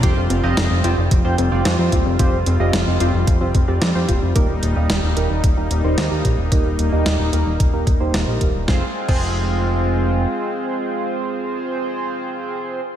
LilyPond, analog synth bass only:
\new Staff \with { instrumentName = "Analog synth bass" } { \clef bass \time 4/4 \key f \minor \tempo 4 = 111 f,,16 f,,16 f,,16 f,,16 f,,16 f,,16 f,,16 f,,16 f,,16 f,,16 f,,16 f,,16 f,16 f,16 ees,,16 f,,16 | f,,16 f,,16 f,,16 f,,16 f,,16 f,,16 f,,16 f,,16 f,,16 f,,16 f,,16 f,,16 f,16 f,16 ees,,16 f,,16 | ees,,16 ees,,16 ees,,16 ees,,16 ees,,16 ees,,16 ees,,16 ees,,16 ees,,16 ees,,16 ees,,16 ees,,16 ees,16 ees,16 bes,,16 ees,,16 | ees,,16 ees,,16 ees,,16 ees,,16 ees,,16 ees,,16 ees,,16 ees,,16 ees,,16 ees,,16 ees,,16 ees,,16 ees,,16 bes,,16 ees,,16 ees,,16 |
f,,16 r8 f,,2~ f,,16 r4 | r1 | }